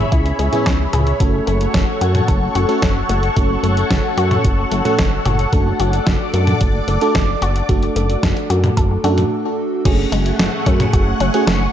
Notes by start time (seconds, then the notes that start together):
Already playing: B3 C#4 E4 G#4 C#5 E5 B5
0.12 C#2 E4, kick, closed hi-hat
0.26 closed hi-hat
0.39 C#2 G#3, closed hi-hat
0.53 B3 C#4 E4 G#4, closed hi-hat, mid tom
0.66 C#2 C#4, kick, snare, closed hi-hat
0.93 C#2 G#4, closed hi-hat, mid tom
1.07 closed hi-hat
1.20 F#1 F#3 A3 C#4 F#4 A4 F#5 C#6, kick, closed hi-hat
1.47 F#1 A3, closed hi-hat
1.61 closed hi-hat
1.74 F#1 C#4, kick, snare, closed hi-hat
2.01 F#2 F#4, closed hi-hat
2.15 closed hi-hat, mid tom
2.28 F#1 A4, kick, closed hi-hat
2.55 F#1 F#4, closed hi-hat
2.69 A3 C#4 F#4 A4, closed hi-hat
2.82 F#1 C#4, kick, snare, closed hi-hat
3.09 F#1 A3, closed hi-hat
3.23 closed hi-hat
3.36 F#1 F#3 A3 C#4 F#4 A4, kick, closed hi-hat
3.63 F#1 A3, closed hi-hat
3.77 closed hi-hat
3.90 F#1 C#4, kick, snare, closed hi-hat
4.17 F#2 F#4, closed hi-hat
4.31 closed hi-hat, mid tom
4.44 F#1 F#3, kick, closed hi-hat
4.72 F#1 A3, closed hi-hat
4.85 A3 C#4 F#4 A4, closed hi-hat, mid tom
4.99 F#1 C#4, kick, snare, closed hi-hat
5.25 F#1 F#4, closed hi-hat, mid tom
5.39 closed hi-hat
5.53 F#1 A3 D4 F#4 A4 D5 D6, kick, closed hi-hat
5.80 F#1 F#4, closed hi-hat
5.93 closed hi-hat
6.07 F#1 D4, kick, snare, closed hi-hat
6.34 F#2 A3, closed hi-hat
6.47 closed hi-hat, mid tom
6.61 F#1 F#3, kick, closed hi-hat
6.88 F#1 A3, closed hi-hat
7.01 A3 D4 F#4 A4, closed hi-hat
7.15 F#1 D4, kick, snare, closed hi-hat
7.42 F#1 F#4, closed hi-hat
7.56 closed hi-hat
7.69 F#1 F#3 A3 D4 F#4 A4, kick, closed hi-hat
7.83 closed hi-hat
7.96 F#1 A3, closed hi-hat
8.10 closed hi-hat
8.23 F#1 D4, kick, snare, closed hi-hat
8.37 closed hi-hat
8.50 F#2 F#4, closed hi-hat
8.64 closed hi-hat, mid tom
8.77 F#1 A4, kick, closed hi-hat
9.04 F#2 A3 D4 F#4 A4, closed hi-hat
9.18 closed hi-hat, mid tom
9.85 F#1 F#3 A3 C#4 F#4 G#4 F#5 G#5 C#6, kick, closed hi-hat, crash
10.12 F#1 G#3, closed hi-hat
10.26 closed hi-hat
10.39 F#1 A3, snare, closed hi-hat
10.66 F#2 C#4, kick, closed hi-hat
10.80 closed hi-hat, mid tom
10.93 F#1 F#4, kick, closed hi-hat
11.20 F#1 C#4, closed hi-hat
11.34 A3 C#4 F#4 G#4, closed hi-hat
11.47 F#1 A3, snare, closed hi-hat